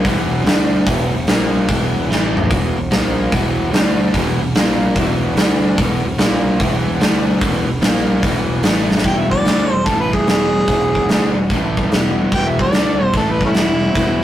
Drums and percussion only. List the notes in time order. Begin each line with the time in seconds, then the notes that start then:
0.05 kick, open hi-hat
0.47 snare, open hi-hat
0.87 kick, open hi-hat
1.27 snare, open hi-hat
1.69 kick, open hi-hat
2.11 snare
2.37 mid tom
2.44 floor tom
2.51 kick, open hi-hat
2.91 snare, open hi-hat
3.32 kick, open hi-hat
3.73 snare, open hi-hat
4.14 kick, open hi-hat
4.55 snare, open hi-hat
4.96 kick, open hi-hat
5.37 snare, open hi-hat
5.78 kick, open hi-hat
6.18 snare, open hi-hat
6.60 kick, open hi-hat
7.01 snare, open hi-hat
7.41 kick, open hi-hat
7.82 snare, open hi-hat
7.97 snare
8.23 kick, open hi-hat
8.63 snare, open hi-hat
8.91 snare
8.98 snare
9.04 kick, open hi-hat
9.32 kick
9.46 snare, open hi-hat
9.86 kick, open hi-hat
10.13 kick
10.27 snare, open hi-hat
10.68 kick, open hi-hat
10.95 kick
11.09 snare, open hi-hat
11.50 kick, open hi-hat
11.77 kick
11.92 snare, open hi-hat
12.32 kick, open hi-hat
12.59 kick
12.73 snare, open hi-hat
13.13 kick, open hi-hat
13.41 kick
13.54 snare, open hi-hat
13.95 kick, open hi-hat